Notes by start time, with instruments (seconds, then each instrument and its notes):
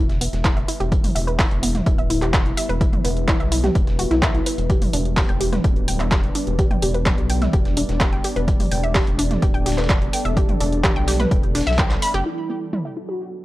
Already playing: analog synth bass E1, ambient pad G3 B3 E4 B4 E5
0.10 snare, closed hi-hat
0.21 synth arpeggio sound B3, closed hi-hat, open hi-hat
0.33 analog synth bass E1, snare, closed hi-hat
0.45 synth arpeggio sound E4, kick, snare, clap, closed hi-hat
0.57 synth arpeggio sound E5, closed hi-hat
0.68 synth arpeggio sound E4, closed hi-hat, open hi-hat
0.80 analog synth bass E1, synth arpeggio sound G4, closed hi-hat
0.92 kick, closed hi-hat
1.04 mid tom, open hi-hat
1.15 analog synth bass E1, synth arpeggio sound E5, closed hi-hat, open hi-hat
1.27 synth arpeggio sound B4, closed hi-hat
1.39 synth arpeggio sound E4, kick, snare, clap, closed hi-hat, open hi-hat
1.51 analog synth bass E1, closed hi-hat
1.63 synth arpeggio sound B3, closed hi-hat, open hi-hat
1.75 snare, closed hi-hat, mid tom
1.86 analog synth bass D1, synth arpeggio sound E4, kick, closed hi-hat
1.98 synth arpeggio sound E5, closed hi-hat
2.10 synth arpeggio sound E4, closed hi-hat, open hi-hat
2.22 analog synth bass E1, synth arpeggio sound G4, clap, closed hi-hat
2.34 kick, snare, clap, closed hi-hat
2.46 closed hi-hat
2.57 synth arpeggio sound E5, closed hi-hat, open hi-hat
2.69 analog synth bass E1, synth arpeggio sound B4, closed hi-hat
2.81 synth arpeggio sound E4, kick, closed hi-hat
2.93 closed hi-hat, mid tom
3.04 analog synth bass E1, synth arpeggio sound B3, closed hi-hat, open hi-hat
3.17 closed hi-hat
3.28 synth arpeggio sound E4, kick, snare, clap, closed hi-hat, mid tom
3.40 analog synth bass B1, synth arpeggio sound E5, closed hi-hat
3.52 synth arpeggio sound E4, closed hi-hat, open hi-hat
3.64 synth arpeggio sound G4, snare, closed hi-hat, mid tom
3.75 analog synth bass E1, kick, closed hi-hat
3.87 snare, closed hi-hat
3.99 synth arpeggio sound F#4, closed hi-hat, open hi-hat
4.11 analog synth bass B1, synth arpeggio sound E4, snare, closed hi-hat
4.22 synth arpeggio sound E5, kick, snare, clap, closed hi-hat
4.35 synth arpeggio sound E4, closed hi-hat
4.46 synth arpeggio sound B4, closed hi-hat, open hi-hat
4.58 analog synth bass E1, closed hi-hat
4.70 ambient pad D4 D5, synth arpeggio sound G4, kick, closed hi-hat
4.82 mid tom, open hi-hat
4.93 analog synth bass E1, synth arpeggio sound D4, closed hi-hat, open hi-hat
5.05 closed hi-hat
5.17 synth arpeggio sound G4, kick, snare, clap, closed hi-hat, open hi-hat
5.29 analog synth bass E1, synth arpeggio sound G5, closed hi-hat
5.41 synth arpeggio sound G4, closed hi-hat, open hi-hat
5.53 synth arpeggio sound B4, snare, closed hi-hat, mid tom
5.64 analog synth bass D1, kick, closed hi-hat
5.76 closed hi-hat
5.88 synth arpeggio sound G5, closed hi-hat, open hi-hat
6.00 analog synth bass E1, synth arpeggio sound E5, clap, closed hi-hat
6.12 synth arpeggio sound G4, kick, snare, clap, closed hi-hat
6.23 closed hi-hat
6.35 synth arpeggio sound D4, closed hi-hat, open hi-hat
6.47 analog synth bass E1, closed hi-hat
6.59 synth arpeggio sound G4, kick, closed hi-hat
6.71 synth arpeggio sound G5, closed hi-hat, mid tom
6.82 analog synth bass E1, synth arpeggio sound G4, closed hi-hat, open hi-hat
6.94 synth arpeggio sound B4, closed hi-hat
7.06 kick, snare, clap, closed hi-hat, mid tom
7.18 analog synth bass B1, closed hi-hat
7.30 synth arpeggio sound G5, closed hi-hat, open hi-hat
7.42 synth arpeggio sound E5, snare, closed hi-hat, mid tom
7.53 analog synth bass E1, synth arpeggio sound G4, kick, closed hi-hat
7.65 snare, closed hi-hat
7.77 synth arpeggio sound D4, closed hi-hat, open hi-hat
7.89 analog synth bass E1, snare, closed hi-hat
8.01 synth arpeggio sound G4, kick, snare, clap, closed hi-hat
8.13 synth arpeggio sound G5, closed hi-hat
8.24 synth arpeggio sound G4, closed hi-hat, open hi-hat
8.36 analog synth bass E1, synth arpeggio sound B4, closed hi-hat
8.48 ambient pad A4, kick, closed hi-hat
8.60 mid tom, open hi-hat
8.71 analog synth bass E1, synth arpeggio sound G5, closed hi-hat, open hi-hat
8.83 synth arpeggio sound E5, closed hi-hat
8.95 synth arpeggio sound G4, kick, snare, clap, closed hi-hat, open hi-hat
9.07 analog synth bass E1, closed hi-hat
9.19 synth arpeggio sound D4, closed hi-hat, open hi-hat
9.31 snare, closed hi-hat, mid tom
9.42 analog synth bass D1, synth arpeggio sound G4, kick, closed hi-hat
9.54 synth arpeggio sound G5, closed hi-hat
9.66 synth arpeggio sound G4, snare, open hi-hat
9.72 snare, open hi-hat
9.78 analog synth bass E1, synth arpeggio sound B4, snare, clap, closed hi-hat, open hi-hat
9.84 snare, open hi-hat
9.90 kick, snare, clap, closed hi-hat
10.02 closed hi-hat
10.13 synth arpeggio sound G5, closed hi-hat, open hi-hat
10.25 analog synth bass E1, synth arpeggio sound E5, closed hi-hat
10.37 synth arpeggio sound G4, kick, closed hi-hat
10.49 closed hi-hat, mid tom
10.60 analog synth bass E1, synth arpeggio sound D4, closed hi-hat, open hi-hat
10.72 closed hi-hat
10.84 synth arpeggio sound G4, kick, snare, clap, closed hi-hat, mid tom
10.96 analog synth bass B1, synth arpeggio sound G5, closed hi-hat
11.08 synth arpeggio sound G4, snare, open hi-hat
11.20 synth arpeggio sound B4, snare, closed hi-hat, mid tom
11.31 analog synth bass E1, kick, closed hi-hat
11.43 closed hi-hat
11.55 synth arpeggio sound D4, snare, open hi-hat
11.61 snare, open hi-hat
11.67 analog synth bass B1, synth arpeggio sound E5, snare, closed hi-hat, open hi-hat
11.73 snare, open hi-hat
11.78 synth arpeggio sound G5, kick, clap, closed hi-hat
11.91 snare, clap, closed hi-hat
12.02 synth arpeggio sound B5, open hi-hat
12.14 analog synth bass F#1, synth arpeggio sound G4, closed hi-hat
12.26 ambient pad G3 B3 E4 B4 E5, synth arpeggio sound E4, analog polysynth E4
12.49 synth arpeggio sound B3
12.73 synth arpeggio sound E4, mid tom
12.85 synth arpeggio sound E5
12.97 synth arpeggio sound E4, analog polysynth F#4
13.09 synth arpeggio sound G4